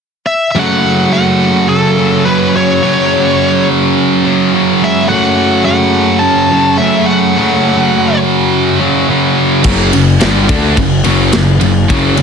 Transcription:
0.26 lead electric guitar E5
0.51 distorted electric guitar F#2, lead electric guitar A3 E5
0.57 distorted electric guitar C#3 F#3, lead electric guitar F#5
1.10 lead electric guitar A3 F#5
1.68 lead electric guitar C#3 A4
1.98 distorted electric guitar F#2 C#3 F#3
2.25 distorted electric guitar F#2 C#3 F#3, lead electric guitar F#3 B4
2.54 lead electric guitar F#3 C#5
2.82 distorted electric guitar F#2 C#3 F#3
4.25 distorted electric guitar F#2 C#3 F#3
4.53 distorted electric guitar F#2 C#3 F#3
4.82 lead electric guitar G#3 E5
5.08 distorted electric guitar F#2 C#3, lead electric guitar A3 F#5
5.12 distorted electric guitar F#3
5.65 lead electric guitar A3 F#5
6.19 lead electric guitar C#4 A5
6.52 distorted electric guitar F#2 C#3 F#3
6.78 distorted electric guitar F#2, lead electric guitar A3 E5
6.82 distorted electric guitar C#3 F#3
7.07 lead electric guitar A3 F#5
7.37 distorted electric guitar F#2 C#3 F#3
8.80 distorted electric guitar F#2 C#3 F#3
9.09 distorted electric guitar F#2 C#3 F#3
9.64 picked electric bass F#1, distorted electric guitar F#2 C#3 F#3, kick, crash
9.92 picked electric bass F#1, distorted electric guitar F#2 C#3, ride
10.20 picked electric bass G1, distorted electric guitar G2 D3 G3, snare, ride
10.48 picked electric bass D2, distorted electric guitar D3 A3 D4, kick, ride
10.76 picked electric bass F#1, distorted electric guitar F#2 C#3, kick, ride
11.04 picked electric bass F#1, distorted electric guitar F#2 C#3 F#3, ride
11.32 picked electric bass F#1, distorted electric guitar F#2 C#3, snare, ride
11.61 picked electric bass F#1, distorted electric guitar F#2 C#3, ride
11.90 picked electric bass F#1, distorted electric guitar F#2 C#3 F#3, kick, ride
12.17 picked electric bass F#1, distorted electric guitar F#2 C#3, ride

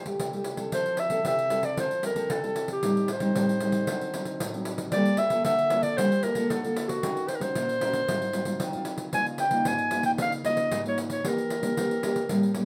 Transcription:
Already playing: nylon-string guitar F3, clarinet C5
0.05 nylon-string guitar A3 E4 G4, pandeiro
0.20 nylon-string guitar C3, pandeiro
0.33 nylon-string guitar A3 E4 G4, pandeiro
0.44 pandeiro
0.57 nylon-string guitar C4 E4 A4, pandeiro
0.72 nylon-string guitar F3, clarinet C5, pandeiro
0.86 pandeiro
0.97 clarinet E5, pandeiro
1.10 nylon-string guitar C4 E4 A4, pandeiro
1.25 nylon-string guitar C3 C4 E4 A4, clarinet E5, pandeiro
1.39 pandeiro
1.50 nylon-string guitar C4 E4 A4, pandeiro
1.63 clarinet D5, pandeiro
1.77 nylon-string guitar F3, clarinet C5, pandeiro
1.91 pandeiro
2.02 nylon-string guitar C4 E4 A4, clarinet A#4, pandeiro
2.14 nylon-string guitar C4 E4 A4, pandeiro
2.29 nylon-string guitar C3, clarinet A4, pandeiro
2.43 nylon-string guitar C4 E4 A4, pandeiro
2.56 pandeiro
2.68 pandeiro
2.72 clarinet G4
2.83 nylon-string guitar A2 G3 C4 D#4, pandeiro
2.97 pandeiro
3.08 clarinet C5, pandeiro
3.20 nylon-string guitar G3 C4 D#4, pandeiro
3.35 nylon-string guitar A2 G3 C4 D#4, pandeiro
3.49 pandeiro
3.60 nylon-string guitar G3 C4 D#4, pandeiro
3.72 pandeiro
3.87 nylon-string guitar D3 F#3 C4 D#4, pandeiro
4.01 pandeiro
4.14 nylon-string guitar F#3 C4 D#4, pandeiro
4.25 pandeiro
4.40 nylon-string guitar A2, pandeiro
4.54 nylon-string guitar F#3 C4 D#4, pandeiro
4.65 pandeiro
4.78 pandeiro
4.92 nylon-string guitar G3 A#3 F4 A4, clarinet D5, pandeiro
5.05 pandeiro
5.17 clarinet E5, pandeiro
5.30 nylon-string guitar A#3 F4 A4, pandeiro
5.45 nylon-string guitar D3, clarinet E5, pandeiro
5.59 pandeiro
5.70 nylon-string guitar A#3 F4 A4, pandeiro
5.83 clarinet D5, pandeiro
5.98 nylon-string guitar G3, clarinet C5, pandeiro
6.12 pandeiro
6.23 nylon-string guitar A#3 F4 A4, clarinet A#4, pandeiro
6.35 nylon-string guitar A#3 F4 A4, pandeiro
6.50 nylon-string guitar D3, clarinet A4, pandeiro
6.63 nylon-string guitar A#3 F4 A4, pandeiro
6.76 pandeiro
6.88 clarinet F#4, pandeiro
7.02 nylon-string guitar D#3 C#4 F#4 A#4, pandeiro
7.17 pandeiro
7.28 clarinet C5, pandeiro
7.35 clarinet A#4
7.40 nylon-string guitar C#4 F#4 A#4, clarinet C5, pandeiro
7.55 nylon-string guitar A#2, pandeiro
7.69 pandeiro
7.81 nylon-string guitar C#4 F#4 A#4, pandeiro
7.93 pandeiro
8.08 nylon-string guitar G#2 F#3 C4 F4, pandeiro
8.22 pandeiro
8.33 nylon-string guitar F#3 C4 F4, pandeiro
8.45 nylon-string guitar F#3 C4 F4, pandeiro
8.60 nylon-string guitar D#3, pandeiro
8.73 nylon-string guitar F#3 C4 F4, pandeiro
8.85 pandeiro
8.98 pandeiro
9.13 nylon-string guitar C#3 A#3 D#4 F4, clarinet G#5, pandeiro
9.26 pandeiro
9.38 clarinet G5, pandeiro
9.51 nylon-string guitar A#3 D#4 F4, pandeiro
9.65 nylon-string guitar G#2, clarinet G#5, pandeiro
9.79 pandeiro
9.91 nylon-string guitar A#3 D#4 F4, pandeiro
10.03 clarinet G5, pandeiro
10.18 nylon-string guitar C#3, clarinet F5, pandeiro
10.32 pandeiro
10.44 nylon-string guitar A#3 D#4 F4, clarinet D#5, pandeiro
10.57 pandeiro
10.72 nylon-string guitar G#2, pandeiro
10.85 nylon-string guitar A#3 D#4 F4, clarinet C#5, pandeiro
10.98 pandeiro
11.10 clarinet C#5, pandeiro
11.24 nylon-string guitar E3 A#3 D4 G4, pandeiro
11.28 clarinet A#4
11.38 pandeiro
11.50 pandeiro
11.62 nylon-string guitar A#3 D4 G4, pandeiro
11.77 nylon-string guitar E3 A#3 D4 G4, pandeiro
11.91 pandeiro
12.03 nylon-string guitar A#3 D4 G4, pandeiro
12.16 pandeiro
12.29 nylon-string guitar A2 G3 A#3 C#4, pandeiro
12.43 pandeiro
12.55 nylon-string guitar G3 A#3 C#4, pandeiro

